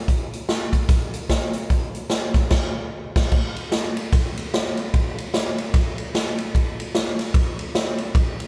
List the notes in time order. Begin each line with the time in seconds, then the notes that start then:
0.08 kick, closed hi-hat
0.33 closed hi-hat
0.49 snare, closed hi-hat
0.73 kick, closed hi-hat
0.89 kick, snare, closed hi-hat
1.14 closed hi-hat
1.29 kick, snare, closed hi-hat
1.53 closed hi-hat
1.70 kick, closed hi-hat
1.95 closed hi-hat
2.10 snare, closed hi-hat
2.34 kick, snare, closed hi-hat
2.51 kick, snare, crash
3.16 kick, snare, crash
3.32 kick, crash
3.56 ride
3.72 snare, ride
3.97 ride
4.13 kick, snare, ride
4.37 ride
4.54 snare, ride
4.77 ride
4.94 kick, ride
5.18 ride
5.34 snare, ride
5.58 ride
5.74 kick, snare, ride
5.98 ride
6.15 snare, ride
6.38 ride
6.55 kick, ride
6.80 ride
6.95 snare, ride
7.19 snare, ride
7.34 kick, ride
7.59 ride
7.75 snare, ride
7.98 ride
8.15 kick, ride
8.40 ride